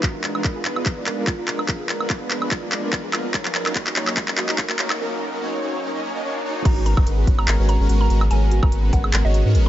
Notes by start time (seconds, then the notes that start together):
0.03 F3 G#3 A#3 B3 D4 F4 G#4 A#4 B4, kick, clap, closed hi-hat, riser
0.14 F4
0.24 A#4, clap, closed hi-hat
0.35 G#3 B3 D4 F4 A#4 B4, high woodblock
0.44 G#3 B3 D4 F4 A#4 B4, kick, clap, closed hi-hat
0.56 G#4
0.65 G#3 B3 D4 F4 B4, clap, closed hi-hat
0.76 F4, high woodblock
0.86 G#3 B3 D4 F4 A#4, kick, clap, closed hi-hat
0.97 G#3 B3 D4 F4 B4 D5
1.06 A#4, clap, closed hi-hat
1.18 G#3 B3 D4 F4 G#4 A#4
1.27 G#3 B3 D4 F4 A#4, kick, clap, closed hi-hat
1.38 F4
1.48 G#3 B3 D4 F4 A#4, clap, closed hi-hat
1.59 B4, high woodblock
1.68 G#3 B3 D4 F4 A#4, kick, clap, closed hi-hat
1.80 G#4
1.89 F4, clap, closed hi-hat
2.00 G#3 B3 D4 F4 A#4, high woodblock
2.10 G#3 B3 D4 F4 A#4 B4, kick, clap, closed hi-hat
2.21 B4
2.31 G#3 B3 D4 F4 A#4 B4, clap, closed hi-hat
2.42 G#4, high woodblock
2.51 G#3 B3 D4 F4 A#4, kick, clap, closed hi-hat
2.63 G#3 B3 D4 F4 D5
2.72 A#4, clap, closed hi-hat
2.83 G#3 B3 D4 F4 A#4 B4
2.93 G#3 B3 D4 F4 A#4, kick, clap, closed hi-hat
3.04 G#4
3.13 G#3 B3 D4 F4 A#4, clap, closed hi-hat, high woodblock
3.25 F4
3.34 F#3 A#3 C#4 D#4 A#4 C#5, kick, clap, closed hi-hat
3.45 D#5, clap
3.55 C#5, clap, closed hi-hat
3.66 F#3 A#3 C#4 D#4 A#4, clap, high woodblock
3.75 F#3 A#3 C#4 D#4 F#4 C#5, kick, clap, closed hi-hat
3.87 F#4, clap
3.96 F#3 A#3 C#4 D#4 C#5, clap, closed hi-hat
4.07 D#5, clap, high woodblock
4.17 F#3 A#3 C#4 D#4 A#4 C#5, kick, clap, closed hi-hat
4.28 F#3 A#3 C#4 D#4 A#4 D#5, clap
4.38 F#4, clap, closed hi-hat
4.49 F#3 A#3 C#4 D#4 F#4 A#4, clap
4.58 F#3 A#3 C#4 D#4 A#4 C#5, kick, clap, closed hi-hat
4.70 D#5, clap
4.79 F#3 A#3 C#4 D#4 A#4 C#5, clap, closed hi-hat
4.90 A#4, clap, high woodblock
5.00 F#3 A#3 C#4 D#4 A#4
5.32 F#3 A#3 C#4 D#4 A#4
5.41 F#3 A#3 C#4 D#4 C#5
5.62 F#3 A#3 C#4 D#4 C#5
5.82 F#3 A#3 C#4 D#4 A#4
5.94 F#3 A#3 C#4 D#4 D#5
6.03 F#3 A#3 C#4 D#4 C#5
6.14 F#3 A#3 C#4 D#4 D#5
6.24 F#3 A#3 C#4 D#4 C#5
6.45 F#3 A#3 C#4 D#4 C#5
6.65 G#1 C#3 G#3 A#3 B3 C#4 F#4 A#4 A#5, kick, closed hi-hat, crash
6.77 F#4
6.86 A#4 A#5, closed hi-hat
6.97 G#1 G#3 B3 C#4 F#4 A#4 B4, kick, high woodblock
7.07 G#1 G#3 B3 C#4 F#4 A#4 B4, closed hi-hat
7.18 G#4
7.27 G#1 G#3 B3 C#4 F#4 B4, kick, closed hi-hat
7.39 F#4 A#5, high woodblock
7.48 G#1 G#3 B3 C#4 F#4 A#4, clap, closed hi-hat
7.59 G#1 G#3 B3 C#4 F#4 B4 C#5
7.69 A#4 A#5, closed hi-hat
7.80 G#1 G#3 B3 C#4 F#4 G#4 A#4
7.89 G#1 G#3 B3 C#4 F#4 A#4, closed hi-hat
8.01 F#4 A#5
8.10 G#1 G#3 B3 C#4 F#4 A#4, closed hi-hat
8.21 B4, high woodblock
8.31 G#1 G#3 B3 C#4 F#4 A#4 G#5, closed hi-hat
8.42 G#4
8.51 F#4, closed hi-hat
8.63 G#1 G#3 B3 C#4 F#4 A#4 A#5, kick, high woodblock
8.72 G#1 G#3 B3 C#4 F#4 A#4 B4, closed hi-hat
8.83 B4
8.93 G#1 G#3 B3 C#4 F#4 A#4 B4 F#5, kick, closed hi-hat
9.04 G#4, high woodblock
9.13 G#1 G#3 B3 C#4 F#4 A#4, clap, closed hi-hat
9.25 G#1 G#3 B3 C#4 F#4 C#5 D#5
9.34 A#4, closed hi-hat
9.45 G#2 G#3 B3 C#4 F#4 A#4 B4
9.55 G#1 G#3 B3 C#4 F#4 A#4, closed hi-hat